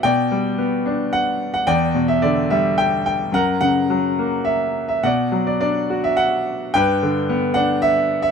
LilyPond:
<<
  \new Staff \with { instrumentName = "Grand piano" } { \time 3/4 \key g \lydian \tempo 4 = 109 << { g''2 fis''8. fis''16 | g''8. e''16 d''8 e''8 g''8 g''8 | fis''8 fis''4 r8 e''8. e''16 | fis''8. d''16 d''8. e''16 fis''4 |
g''4. fis''8 e''8. e''16 | } \\ { d''2 r4 | d''4. r4. | ais'4. r4. | d''4. r4. |
b'4. r4. | } >> }
  \new Staff \with { instrumentName = "Grand piano" } { \clef bass \time 3/4 \key g \lydian b,8 g8 b8 d'4. | e,8 b,8 d8 g4. | fis,8 cis8 fis8 ais4. | b,8 fis8 d'8 fis'4. |
g,8 d8 b8 d'4. | }
>>